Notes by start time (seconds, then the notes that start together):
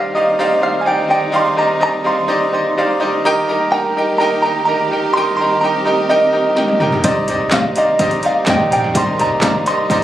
Already playing: C3 D#3 G3 C4 D#4 G4 C5 D5 D#5 F5
0.15 D#4 G4 C5 D5 D#5 F5
0.39 D#4 G4 C5 D5 F5
0.61 D#4 G4 C5 D5 F5
0.81 D#4 G4 G#5
0.86 C5 D5 F5 G5
1.09 D#4 G4 C5 D5 D#5 G5
1.32 C3 D#4 G4 C5 D5 F5 C6
1.57 D#4 G4 C5 D5 D#5 A#5
1.80 D#4 G4 C5 D5 D#5 A#5
2.04 D#4 G4 C5 D5 F5 C6
2.28 D#4 G4 C5 D5 D#5
2.53 D#4 G4 C5 D5 D#5
2.77 D#4 G4 C5 D5 F5
3.00 D#4 G4 C5 D5 D#5
3.24 D#3 A#3 D#4 G4 A#4 D#5 G5
3.48 D#4 G4 A#4 D#5 A#5
3.72 D#4 G4 A#4 D#5 G5 A#5
3.97 D#4 G4 A#4 D#5 G5
4.18 D#4 G4 A#4 D#5 G5 A#5
4.42 D#4 G4 A#4 D#5 G5 A#5
4.65 D#4 G4 A#4 D#5 A#5
4.91 D#4 G4 A#4 D#5 G5
5.13 D#3 C4 D#4 G4 A#4 D#5 C6
5.17 G5
5.37 D#4 G4 A#4 C6
5.41 D#5 A#5
5.61 D#4 G4 A#4 D#5 G5 A#5
5.85 D#4 G4 A#4 D#5 G5
6.09 D#4 G4 A#4 D#5 G5
6.33 D#4 G4 A#4 D#5 G5
6.56 D#4 G4 A#4 D#5 G5, snare
6.68 high tom
6.80 D#4 G4 A#4 D#5 G5, mid tom
6.92 floor tom
7.03 C2 C3 D#3 C4 D#4 G4 C5 D5 D#5, kick, closed hi-hat
7.28 D#4 G4 C5 D5 D#5, closed hi-hat, floor tom
7.51 D#4 G4 C5 D5 D#5 F5, kick, snare, clap, closed hi-hat
7.76 D#4 G4 C5 D5 D#5 F5, closed hi-hat
7.99 D#4 G4 C5 D5 D#5, kick, closed hi-hat
8.11 closed hi-hat
8.23 D#4 G4 C5 D5 D#5 F5, closed hi-hat
8.46 F1 D#4 G4 C5 D5 D#5 G5, kick, snare, clap, closed hi-hat
8.60 floor tom
8.71 A#1 D#4 G4 C5 D5 F5 G5, closed hi-hat
8.84 floor tom
8.94 C2 C3 A#3 D#4 G4 C5 D5 D#5 C6, kick, closed hi-hat
9.19 D#4 G4 C5 D5 D#5 A#5, closed hi-hat, floor tom
9.41 D#4 G4 C5 D5 F5 A#5, kick, snare, clap, closed hi-hat
9.66 D#4 G4 C5 D5 D#5 C6, closed hi-hat
9.90 D#4 G4 C5 D5 D#5, kick, closed hi-hat